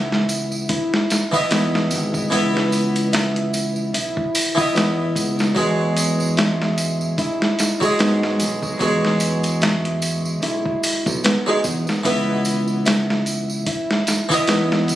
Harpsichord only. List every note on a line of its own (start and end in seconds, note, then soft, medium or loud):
0.00 1.27 E3 medium
0.00 1.28 B3 medium
1.32 2.27 E3 medium
1.32 2.28 B3 medium
1.36 2.29 D#5 medium
2.30 4.51 E3 medium
2.30 4.52 B3 medium
4.55 5.51 E3 medium
4.55 5.52 B3 medium
4.60 5.53 D#5 medium
5.55 7.76 F#3 medium
5.55 7.77 G#3 medium
7.80 8.76 F#3 medium
7.80 8.77 G#3 medium
7.85 8.78 D#5 medium
8.79 11.00 F#3 medium
8.79 11.01 G#3 medium
11.46 11.57 F#3 medium
11.46 11.58 G#3 medium
11.46 11.58 D#4 loud
12.03 14.24 E3 medium
12.03 14.26 B3 medium
14.29 14.95 E3 medium
14.29 14.95 B3 medium
14.34 14.95 D#5 medium